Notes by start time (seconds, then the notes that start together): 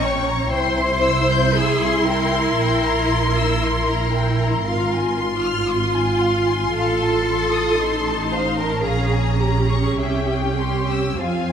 Already playing: A#1 C#4 C#6
0.01 C#5 G5
0.28 A#5
0.51 C2 E4 C5 G5 C6
0.78 C6
1.04 E6
1.30 G6
1.55 G#4 E6
1.81 C6
2.08 A#4 G5
2.34 C6
2.60 A#1 G5
2.85 A#5
3.12 C6
3.37 E6
3.64 C6
3.89 A#5
4.16 G5
4.42 A#5
4.65 G#1 F4 F5 C6
4.93 G#5
5.19 C6
5.43 F6
5.70 C6
5.95 G#5
6.21 F5
6.48 G#5
6.72 A1 A4 F5
7.01 A5
7.27 C6
7.53 D#6
7.77 D#4 C6
8.06 A5
8.31 C5 F5
8.58 A#4 A5
8.83 A#1 C#4 G#4 F5 A#5
9.13 G#5
9.41 G4 A#5
9.49 G#4
9.58 G4
9.67 G#4 C#6
9.76 G4
9.83 G#4
9.92 G4
9.97 C2 G#4 E5 G5
10.08 G4
10.18 G#4
10.27 G4 G5
10.35 G#4
10.43 G4
10.52 G#4
10.60 G4 C6
10.90 E6
11.18 F2 C4 F4 F5
11.22 G#5